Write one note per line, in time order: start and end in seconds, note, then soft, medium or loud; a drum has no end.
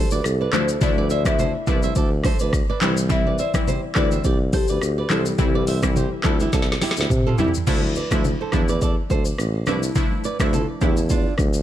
0.00 0.24 A4 medium
0.11 0.21 D2 medium
0.11 0.22 B4 medium
0.11 0.22 D5 medium
0.11 shaker medium
0.24 0.47 C2 medium
0.24 0.54 A4 medium
0.24 cross-stick medium
0.24 shaker medium
0.41 0.51 B4 medium
0.41 0.50 D5 medium
0.52 0.75 D2 medium
0.52 0.75 F3 medium
0.52 0.75 A3 medium
0.52 0.75 D4 medium
0.52 0.75 E4 medium
0.52 0.66 A4 medium
0.52 0.65 C5 medium
0.52 0.83 C5 medium
0.52 cross-stick medium
0.52 clap medium
0.52 high conga medium
0.52 shaker soft
0.68 shaker medium
0.81 1.51 D2 loud
0.81 1.22 F3 loud
0.81 1.22 A3 medium
0.81 1.22 D4 medium
0.81 1.22 E4 loud
0.81 1.09 D5 loud
0.81 kick loud
0.81 low conga medium
0.81 shaker medium
0.97 1.08 B4 medium
0.97 1.07 D5 medium
0.97 high conga medium
1.10 1.23 C5 medium
1.10 1.18 D5 medium
1.10 1.23 E5 medium
1.10 shaker medium
1.25 1.64 F3 medium
1.25 1.64 A3 medium
1.25 1.64 D4 medium
1.25 1.64 E4 medium
1.25 2.78 E5 loud
1.25 kick medium
1.25 cross-stick loud
1.25 high conga medium
1.25 shaker medium
1.39 1.52 A4 medium
1.39 1.51 C5 medium
1.39 low conga medium
1.39 shaker medium
1.67 1.89 C2 loud
1.67 1.94 F3 medium
1.67 1.94 A3 medium
1.67 1.94 D4 medium
1.67 1.94 E4 medium
1.67 1.80 B4 medium
1.67 1.80 D5 medium
1.67 kick loud
1.67 high conga medium
1.67 shaker medium
1.83 1.94 C5 medium
1.83 1.93 E5 medium
1.83 shaker medium
1.96 2.30 D2 loud
1.96 2.09 A4 medium
1.96 2.08 D5 medium
1.96 kick medium
1.96 shaker medium
2.24 2.37 A4 medium
2.24 2.37 C5 medium
2.24 kick medium
2.24 cross-stick medium
2.24 open hi-hat medium
2.24 high conga medium
2.24 shaker medium
2.39 2.62 D2 medium
2.39 2.51 B4 medium
2.39 2.50 D5 medium
2.39 shaker medium
2.53 kick medium
2.53 cross-stick medium
2.53 shaker medium
2.70 2.79 B4 medium
2.70 2.79 D5 medium
2.81 3.39 C2 loud
2.81 3.03 E3 medium
2.81 3.04 G3 medium
2.81 3.04 C4 medium
2.81 3.04 E4 medium
2.81 2.95 G4 medium
2.81 2.94 C5 medium
2.81 clap medium
2.81 high conga medium
2.81 shaker soft
2.97 shaker medium
3.09 3.32 E3 loud
3.09 3.32 G3 medium
3.09 3.32 C4 medium
3.09 3.32 E4 loud
3.09 3.40 E5 loud
3.09 kick loud
3.09 low conga medium
3.09 shaker medium
3.26 3.37 B4 medium
3.26 3.36 D5 medium
3.26 high conga medium
3.38 3.52 C5 medium
3.38 3.92 D5 loud
3.38 3.51 E5 medium
3.38 shaker medium
3.54 3.75 E3 medium
3.54 3.75 G3 medium
3.54 3.75 C4 medium
3.54 3.75 E4 medium
3.54 kick loud
3.54 cross-stick loud
3.54 high conga medium
3.54 shaker medium
3.68 3.80 G4 medium
3.68 3.80 C5 medium
3.68 low conga medium
3.68 shaker medium
3.95 4.18 D2 loud
3.95 4.18 E3 medium
3.95 4.18 G3 medium
3.95 4.18 C4 medium
3.95 4.18 E4 medium
3.95 4.09 B4 medium
3.95 4.55 D5 loud
3.95 4.08 D5 medium
3.95 kick loud
3.95 cross-stick medium
3.95 clap medium
3.95 high conga medium
3.95 shaker soft
4.11 4.22 C5 medium
4.11 4.22 E5 medium
4.11 shaker medium
4.24 4.59 C2 loud
4.24 4.37 G4 medium
4.24 4.37 D5 medium
4.24 kick medium
4.24 shaker medium
4.53 5.12 G4 medium
4.53 4.66 A4 medium
4.53 4.65 C5 medium
4.53 kick medium
4.53 open hi-hat medium
4.53 high conga medium
4.53 shaker medium
4.68 4.79 D2 medium
4.68 4.79 B4 medium
4.68 4.79 D5 medium
4.68 shaker medium
4.81 5.04 D2 loud
4.81 cross-stick medium
4.81 shaker medium
4.98 5.08 B4 medium
4.98 5.07 D5 medium
5.09 5.32 C2 medium
5.09 5.32 E3 medium
5.09 5.32 G3 medium
5.09 5.32 C4 medium
5.09 5.32 E4 medium
5.09 5.24 A4 medium
5.09 5.23 A4 medium
5.09 5.23 C5 medium
5.09 cross-stick medium
5.09 clap medium
5.09 high conga medium
5.09 shaker soft
5.26 shaker medium
5.38 6.08 C2 loud
5.38 5.79 E3 loud
5.38 5.79 G3 medium
5.38 5.79 C4 medium
5.38 5.79 E4 loud
5.38 7.35 G4 medium
5.38 kick loud
5.38 low conga medium
5.38 shaker medium
5.54 5.65 B4 medium
5.54 5.65 D5 medium
5.54 high conga medium
5.67 5.80 C5 medium
5.67 5.80 E5 medium
5.67 open hi-hat medium
5.67 shaker medium
5.83 6.21 E3 medium
5.83 6.21 G3 medium
5.83 6.21 C4 medium
5.83 6.21 E4 medium
5.83 kick loud
5.83 cross-stick loud
5.83 high conga medium
5.83 shaker medium
5.96 6.09 G4 medium
5.96 6.08 C5 medium
5.96 low conga medium
5.96 shaker medium
6.23 6.47 D2 medium
6.23 6.51 E3 medium
6.23 6.51 G3 medium
6.23 6.51 C4 medium
6.23 6.51 E4 medium
6.23 6.37 F4 medium
6.23 6.37 A4 medium
6.23 kick loud
6.23 cross-stick medium
6.23 clap medium
6.23 high conga medium
6.23 shaker medium
6.40 6.51 E4 medium
6.40 6.50 G4 medium
6.40 shaker medium
6.53 6.75 C2 loud
6.53 6.66 E4 medium
6.53 6.65 A4 medium
6.53 kick medium
6.53 snare medium
6.53 shaker medium
6.62 snare medium
6.72 snare medium
6.81 6.94 E4 medium
6.81 6.94 G4 medium
6.81 snare medium
6.81 open hi-hat medium
6.81 high conga medium
6.81 shaker medium
6.91 snare medium
6.96 7.07 D2 loud
6.96 7.08 E4 medium
6.96 7.08 G4 medium
6.96 shaker medium
7.01 snare medium
7.10 7.32 C3 loud
7.10 kick medium
7.10 mid tom medium
7.10 shaker medium
7.20 mid tom medium
7.27 7.37 F4 medium
7.27 7.36 A4 medium
7.27 mid tom loud
7.38 7.51 C2 medium
7.38 7.61 E3 medium
7.38 7.61 G3 medium
7.38 7.61 C4 medium
7.38 7.61 E4 medium
7.38 7.52 E4 medium
7.38 7.51 G4 medium
7.38 floor tom medium
7.38 high conga medium
7.38 shaker soft
7.48 floor tom loud
7.54 floor tom medium
7.54 shaker medium
7.67 8.02 D2 loud
7.67 7.89 F3 loud
7.67 7.89 A3 medium
7.67 7.89 D4 medium
7.67 7.89 E4 loud
7.67 7.80 A4 medium
7.67 7.80 C5 medium
7.67 kick loud
7.67 crash medium
7.67 low conga medium
7.67 shaker medium
7.83 high conga medium
7.96 8.09 B4 medium
7.96 8.08 D5 medium
7.96 shaker medium
8.11 8.34 D2 medium
8.11 8.32 F3 medium
8.11 8.32 A3 medium
8.11 8.32 D4 medium
8.11 8.32 E4 medium
8.11 8.22 C5 medium
8.11 8.22 E5 medium
8.11 kick medium
8.11 cross-stick loud
8.11 high conga medium
8.11 shaker medium
8.25 low conga medium
8.25 shaker medium
8.41 8.51 A4 medium
8.41 8.50 C5 medium
8.52 8.97 E2 medium
8.52 8.75 F3 medium
8.52 8.75 A3 medium
8.52 8.75 D4 medium
8.52 8.75 E4 medium
8.52 kick loud
8.52 cross-stick medium
8.52 high conga medium
8.52 shaker soft
8.68 8.79 B4 medium
8.68 8.79 D5 medium
8.68 shaker medium
8.81 8.94 A4 medium
8.81 8.94 D5 medium
8.81 kick medium
8.81 shaker medium
9.10 9.32 D2 medium
9.10 9.23 A4 medium
9.10 9.22 C5 medium
9.10 kick medium
9.10 high conga medium
9.10 shaker soft
9.25 shaker medium
9.38 9.68 A1 loud
9.38 cross-stick medium
9.38 shaker medium
9.67 9.89 C2 medium
9.67 9.89 F3 medium
9.67 9.89 A3 medium
9.67 9.89 D4 medium
9.67 9.89 E4 medium
9.67 9.80 B4 medium
9.67 9.80 D5 medium
9.67 cross-stick medium
9.67 high conga medium
9.67 shaker soft
9.83 shaker medium
9.95 10.36 F3 medium
9.95 10.36 A3 medium
9.95 10.36 D4 medium
9.95 10.36 E4 loud
9.95 kick loud
9.95 low conga medium
9.95 shaker medium
10.11 high conga medium
10.24 10.37 B4 medium
10.24 10.37 D5 medium
10.24 shaker medium
10.40 10.62 D2 medium
10.40 10.78 F3 medium
10.40 10.78 A3 medium
10.40 10.78 D4 medium
10.40 10.79 E4 medium
10.40 10.51 C5 medium
10.40 10.50 E5 medium
10.40 kick medium
10.40 cross-stick loud
10.40 high conga medium
10.40 shaker medium
10.53 10.66 F4 medium
10.53 10.65 A4 medium
10.53 low conga medium
10.53 shaker medium
10.81 11.26 E2 medium
10.81 11.08 F3 medium
10.81 11.08 A3 medium
10.81 11.08 D4 medium
10.81 11.08 E4 medium
10.81 10.94 E4 medium
10.81 10.94 G4 medium
10.81 kick medium
10.81 high conga medium
10.81 shaker soft
10.97 shaker medium
11.10 11.33 D4 medium
11.10 11.32 F4 medium
11.10 kick medium
11.10 shaker medium
11.38 11.63 D2 loud
11.38 kick medium
11.38 cross-stick medium
11.38 high conga medium
11.38 shaker medium
11.53 shaker medium